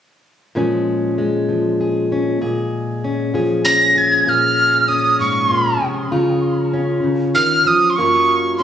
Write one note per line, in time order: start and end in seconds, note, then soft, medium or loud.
0.55 2.40 A#2 medium
0.55 1.47 F3 soft
0.55 1.17 G#3 soft
0.55 2.11 C#4 soft
0.55 1.79 G#4 medium
1.18 4.27 G#3 soft
1.49 2.38 F3 soft
1.81 2.38 G#4 soft
2.12 2.39 C#4 soft
2.41 4.25 A#2 medium
2.41 3.35 G#4 medium
3.04 3.65 C#4 soft
3.34 6.84 F3 soft
3.34 3.95 G#4 medium
3.65 4.88 C#4 soft
3.65 3.99 A#6 medium
3.95 4.27 G#4 medium
3.95 4.30 G#6 medium
4.27 5.49 A#2 medium
4.27 6.09 G#4 medium
4.27 4.90 F6 medium
4.88 6.73 C#4 soft
4.88 5.20 D#6 medium
5.19 5.50 G#2 medium
5.19 5.86 C#6 medium
5.51 5.81 A#2 medium
5.81 6.11 C3 medium
6.11 7.02 C#3 medium
6.11 8.00 F4 medium
6.73 7.99 C#4 soft
7.04 7.35 C#3 medium
7.35 7.65 D#3 medium
7.35 7.69 F6 medium
7.65 7.97 F3 medium
7.65 7.92 D#6 medium
7.90 7.97 C6 medium
7.96 8.63 F#2 medium
7.96 8.63 F#3 medium
7.96 8.63 A#3 medium
7.96 8.60 C#4 medium
7.96 8.57 C#6 medium
8.00 8.63 F4 medium
8.58 8.63 C#4 soft
8.58 8.63 C6 medium